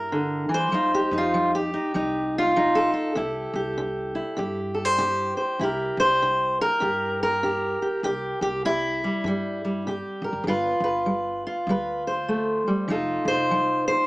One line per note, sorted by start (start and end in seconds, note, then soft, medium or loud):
0.00 0.43 G2 medium
0.00 0.72 E4 soft
0.00 0.72 G4 soft
0.00 0.54 A#4 soft
0.12 0.49 D3 medium
0.49 0.71 E3 medium
0.54 1.55 C5 medium
0.72 1.02 F2 medium
0.72 1.29 F3 medium
0.72 1.11 D#4 soft
0.72 0.94 F4 soft
0.94 1.14 G4 medium
1.11 1.75 F2 medium
1.11 1.72 D#4 soft
1.18 1.54 F4 medium
1.34 1.91 F3 medium
1.55 2.36 G4 medium
1.74 1.94 D#4 soft
1.94 2.88 C2 medium
1.94 2.51 F3 medium
1.94 2.55 D#4 soft
2.38 2.92 F4 medium
2.56 3.13 F3 medium
2.56 3.15 D#4 soft
2.75 4.59 A4 medium
2.93 3.14 F4 soft
3.15 3.45 C2 medium
3.15 3.73 C3 medium
3.15 4.15 E4 soft
3.15 3.55 G4 soft
3.54 4.18 C2 medium
3.54 4.37 G4 soft
3.78 4.34 C3 medium
4.15 5.61 E4 soft
4.37 5.31 G2 medium
4.37 4.94 C3 medium
4.37 4.98 G4 soft
4.75 4.85 A4 soft
4.85 5.36 C5 soft
4.98 5.55 C3 medium
4.98 5.62 G4 soft
5.37 5.63 C5 soft
5.60 5.89 C2 medium
5.60 6.17 C3 medium
5.60 8.01 E4 soft
5.60 6.82 G4 medium
5.60 5.99 A#4 soft
5.97 6.62 C2 medium
5.97 6.60 C5 medium
6.22 6.78 C3 medium
6.61 7.21 A#4 medium
6.80 7.74 G2 medium
6.80 7.37 C3 medium
6.80 7.43 G4 soft
7.23 8.66 A#4 medium
7.43 7.99 C3 medium
7.43 7.82 G4 soft
7.82 8.04 G4 soft
8.03 8.32 C2 medium
8.03 8.60 C3 medium
8.03 8.41 G4 medium
8.41 9.05 C2 medium
8.41 8.65 G4 medium
8.65 9.21 C3 medium
8.65 9.86 E4 loud
9.04 9.27 G3 soft
9.24 9.99 G2 medium
9.24 9.81 C3 medium
9.24 9.64 G3 soft
9.65 10.46 G3 soft
9.87 10.42 C3 medium
9.87 10.44 G4 soft
10.22 10.32 A1 medium
10.22 10.44 A#4 soft
10.33 10.43 G1 medium
10.44 10.73 G1 medium
10.44 11.03 G3 medium
10.48 11.46 F4 medium
10.48 10.83 B4 medium
10.80 11.45 G1 medium
10.80 11.67 B4 medium
11.06 11.62 G3 medium
11.47 12.87 F4 medium
11.67 12.59 D2 medium
11.67 12.24 G3 medium
11.67 12.06 B4 medium
12.07 12.87 C5 medium
12.28 12.66 A3 medium
12.67 12.90 G3 medium
12.88 13.17 F1 medium
12.88 13.45 F3 medium
12.88 14.07 D#4 soft
12.88 14.07 F4 soft
12.88 13.27 A4 soft
13.25 13.89 F1 medium
13.25 13.86 C5 medium
13.51 14.06 F3 medium
13.88 14.07 C5 medium